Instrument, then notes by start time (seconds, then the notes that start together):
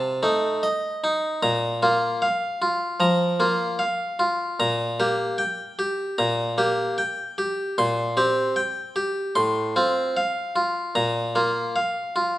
harpsichord
Already playing: C3 A5
0.23 A3 D#4
0.63 D#5
1.04 D#4
1.43 A#2 A#5
1.83 A#3 F4
2.22 F5
2.62 F4
3.00 F3 A#5
3.40 A#3 F4
3.79 F5
4.19 F4
4.60 A#2 A#5
5.00 A#3 G4
5.38 G5
5.79 G4
6.18 A#2 A#5
6.58 A#3 G4
6.98 G5
7.38 G4
7.78 A#2 C6
8.17 C4 G4
8.56 G5
8.96 G4
9.35 A2 C6
9.76 C4 F4
10.17 F5
10.56 F4
10.95 A#2 A#5
11.35 A#3 F4
11.76 F5
12.16 F4